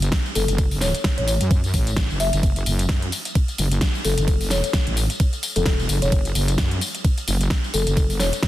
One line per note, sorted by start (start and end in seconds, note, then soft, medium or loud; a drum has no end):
0.00 0.11 F#1 loud
0.00 closed hi-hat medium
0.00 tambourine soft
0.12 kick loud
0.12 snare loud
0.12 ride medium
0.12 tambourine soft
0.26 tambourine soft
0.35 0.46 F#1 loud
0.35 0.56 A4 medium
0.35 open hi-hat loud
0.35 tambourine medium
0.48 0.92 F#1 loud
0.48 closed hi-hat medium
0.48 tambourine soft
0.58 kick loud
0.58 ride medium
0.58 tambourine soft
0.71 open hi-hat medium
0.71 tambourine soft
0.81 1.03 C#5 medium
0.81 snare medium
0.81 open hi-hat loud
0.81 tambourine medium
0.95 closed hi-hat medium
0.95 tambourine soft
1.04 kick loud
1.04 snare loud
1.04 ride medium
1.04 tambourine soft
1.18 1.39 A1 loud
1.18 1.24 C#5 medium
1.18 closed hi-hat medium
1.28 1.36 C#5 medium
1.28 open hi-hat loud
1.28 tambourine medium
1.41 1.72 F#2 loud
1.41 closed hi-hat medium
1.41 tambourine soft
1.51 kick loud
1.51 ride medium
1.51 tambourine soft
1.64 closed hi-hat soft
1.64 tambourine soft
1.74 2.08 A1 loud
1.74 kick medium
1.74 open hi-hat loud
1.74 tambourine medium
1.87 closed hi-hat medium
1.87 tambourine soft
1.97 kick loud
1.97 snare loud
1.97 ride medium
2.10 2.31 F#1 loud
2.10 tambourine soft
2.20 2.66 E5 medium
2.20 open hi-hat loud
2.20 tambourine medium
2.33 2.41 F#1 medium
2.33 closed hi-hat medium
2.33 tambourine soft
2.43 2.65 F#1 loud
2.43 kick loud
2.43 ride medium
2.43 tambourine soft
2.56 closed hi-hat medium
2.56 tambourine soft
2.66 2.88 F#1 loud
2.66 open hi-hat loud
2.66 tambourine medium
2.79 closed hi-hat medium
2.79 tambourine soft
2.89 3.11 F#2 loud
2.89 kick loud
2.89 snare loud
2.89 ride medium
3.02 closed hi-hat medium
3.12 open hi-hat loud
3.12 tambourine medium
3.25 closed hi-hat medium
3.25 tambourine soft
3.35 kick loud
3.35 ride medium
3.35 tambourine soft
3.48 closed hi-hat soft
3.48 tambourine soft
3.58 3.80 F#1 loud
3.58 open hi-hat loud
3.58 tambourine medium
3.71 closed hi-hat medium
3.71 tambourine soft
3.81 kick loud
3.81 snare loud
3.81 ride medium
3.81 tambourine soft
3.95 tambourine soft
4.05 4.16 F#1 medium
4.05 4.26 A4 medium
4.05 open hi-hat loud
4.05 tambourine medium
4.18 4.62 F#1 loud
4.18 closed hi-hat medium
4.18 tambourine soft
4.28 kick loud
4.28 ride medium
4.28 tambourine soft
4.41 open hi-hat medium
4.41 tambourine soft
4.50 4.72 C#5 medium
4.50 snare medium
4.50 open hi-hat loud
4.50 tambourine medium
4.64 closed hi-hat medium
4.64 tambourine soft
4.73 kick loud
4.73 snare loud
4.73 ride medium
4.73 tambourine soft
4.87 5.08 A1 loud
4.87 closed hi-hat medium
4.97 open hi-hat loud
4.97 tambourine medium
5.10 closed hi-hat medium
5.10 tambourine soft
5.20 kick loud
5.20 ride medium
5.20 tambourine soft
5.33 closed hi-hat soft
5.33 tambourine soft
5.43 open hi-hat loud
5.43 tambourine medium
5.56 5.88 E1 loud
5.56 5.77 A4 medium
5.56 closed hi-hat medium
5.56 tambourine soft
5.66 kick loud
5.66 snare loud
5.66 ride medium
5.80 tambourine soft
5.89 6.00 F#1 loud
5.89 open hi-hat loud
5.89 tambourine medium
6.02 6.11 E1 medium
6.02 6.66 C#5 medium
6.02 closed hi-hat medium
6.02 tambourine soft
6.12 6.34 F#1 loud
6.12 kick loud
6.12 ride medium
6.12 tambourine medium
6.25 closed hi-hat medium
6.25 tambourine soft
6.35 6.57 F#1 loud
6.35 open hi-hat loud
6.35 tambourine medium
6.48 closed hi-hat medium
6.48 tambourine soft
6.58 6.80 F#2 loud
6.58 kick loud
6.58 snare loud
6.58 ride medium
6.71 closed hi-hat medium
6.81 open hi-hat loud
6.81 tambourine medium
6.95 closed hi-hat medium
6.95 tambourine soft
7.05 kick loud
7.05 ride medium
7.05 tambourine soft
7.18 closed hi-hat soft
7.18 tambourine soft
7.28 7.49 F#1 loud
7.28 open hi-hat loud
7.28 tambourine medium
7.41 closed hi-hat medium
7.41 tambourine soft
7.50 kick loud
7.50 snare loud
7.50 ride medium
7.50 tambourine soft
7.64 tambourine soft
7.74 7.85 F#1 loud
7.74 7.95 A4 medium
7.74 open hi-hat loud
7.74 tambourine medium
7.87 8.31 F#1 medium
7.87 closed hi-hat medium
7.87 tambourine soft
7.97 kick loud
7.97 ride medium
7.97 tambourine soft
8.10 open hi-hat medium
8.10 tambourine soft
8.20 8.41 C#5 medium
8.20 snare medium
8.20 open hi-hat loud
8.20 tambourine medium
8.33 closed hi-hat medium
8.33 tambourine soft
8.43 kick loud
8.43 snare loud
8.43 ride medium
8.43 tambourine soft